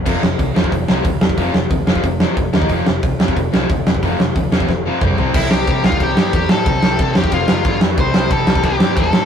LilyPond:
<<
  \new Staff \with { instrumentName = "Lead electric guitar" } { \time 4/4 \key f \lydian \tempo 4 = 182 r1 | r1 | r1 | r1 |
<e' e''>8 <g' g''>4 <f' f''>8 <g' g''>8 <g' g''>4 <a' a''>8~ | <a' a''>4. <g' g''>8 <f' f''>4. r8 | <c'' c'''>4 <a' a''>4 <g' g''>4 <a' a''>4 | }
  \new Staff \with { instrumentName = "Overdriven electric guitar" } { \clef bass \time 4/4 \key f \lydian <f, c f>8 <f, c>8 <f, c>8 <f, c f>8 <f, c>8 <f, c f>8 <f, c>8 <f, c>8 | <f, c f>8 <f, c>8 <f, c>8 <f, c f>8 <f, c>8 <f, c f>8 <f, c>8 <ees bes ees'>8 | <f, c f>8 <f, c>8 <f, c>8 <f, c f>8 <f, c>8 <f, c f>8 <f, c>8 <f, c>8 | <f, c f>8 <f, c>8 <f, c>8 <f, c f>8 <f, c>8 <f, c f>8 <c g c'>8 <c g c'>8 |
<c g c'>8 <c g c'>8 <c g c'>8 <c g c'>8 <c g c'>8 <c g c'>8 <c g c'>8 <c g c'>8 | <c g c'>8 <c g c'>8 <c g c'>8 <c g c'>8 <f, c f>8 <f, c f>8 <g, d g>8 <g, d g>8 | <c g c'>8 <c g c'>8 <c g c'>8 <c g c'>8 <c g c'>8 <c g c'>8 <c g c'>8 <c g c'>8 | }
  \new Staff \with { instrumentName = "Overdriven electric guitar" } { \clef bass \time 4/4 \key f \lydian <f, c f>8 <f, c>8 <f, c>8 <f, c f>8 <f, c>8 <f, c f>8 <f, c>8 <f, c>8 | <f, c f>8 <f, c>8 <f, c>8 <f, c f>8 <f, c>8 <f, c f>8 <f, c>8 <ees bes ees'>8 | <f, c f>8 <f, c>8 <f, c>8 <f, c f>8 <f, c>8 <f, c f>8 <f, c>8 <f, c>8 | <f, c f>8 <f, c>8 <f, c>8 <f, c f>8 <f, c>8 <f, c f>8 <c g c'>8 <c g c'>8 |
r1 | r1 | r1 | }
  \new Staff \with { instrumentName = "Picked electric bass" } { \clef bass \time 4/4 \key f \lydian f,,8 f,,8 c,8 f,,8 f,,8 c,8 d,8 f,,8 | f,,8 f,,8 d,8 f,,8 f,,4 f,,8 ees,8 | f,,8 f,,8 c,8 f,,8 f,,8 c,8 d,8 f,,8 | f,,8 f,,8 d,8 f,,8 f,,4 c,8 c,8 |
c,8 c,8 c8 c,8 c,8 g,8 e,8 a,8 | c,8 c,8 c8 e,8 f,,8 fis,,8 g,,8 f,8 | c,8 c,8 c8 c,8 c,8 g,8 e,8 a,8 | }
  \new DrumStaff \with { instrumentName = "Drums" } \drummode { \time 4/4 <cymc bd>8 sn8 <hho bd>8 sn16 bd16 <hho bd>8 sn8 <hho bd>8 sn16 bd16 | <hho bd>8 sn8 <hho bd>8 sn16 bd16 <hho bd>8 sn8 <hho bd>8 sn16 bd16 | <hho bd>8 sn8 <hho bd>8 sn16 bd16 <hho bd>8 sn8 <hho bd>8 sn16 bd16 | <hho bd>8 sn8 <hho bd>8 sn16 bd16 <bd sn>4 <bd toml>8 tomfh8 |
<cymc bd>8 sn8 <bd cymr>8 sn16 bd16 <bd cymr>8 sn8 <bd cymr>8 sn8 | <bd cymr>8 sn8 <bd cymr>8 sn16 bd16 <bd cymr>8 sn8 <bd cymr>8 sn8 | <bd cymr>8 sn8 <bd cymr>8 sn16 bd16 <bd cymr>8 sn8 <bd cymr>8 sn8 | }
>>